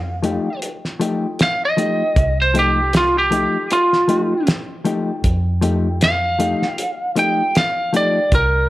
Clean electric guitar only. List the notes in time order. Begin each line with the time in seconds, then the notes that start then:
0.23 F3 A3 D#4 G4
1.00 F3 A3 D#4 G4
1.77 F3 A3 D#4 G4
2.54 F3 A3 D#4 G4
3.31 F3 A3 D#4 G4
4.08 F3 A3 D#4 G4
4.85 F3 A3 D#4 G4
5.61 F3 A3 D#4 G4
6.39 F3 A3 D#4 G4
7.16 F3 A3 D#4 G4
7.93 F3 A3 D#4 G4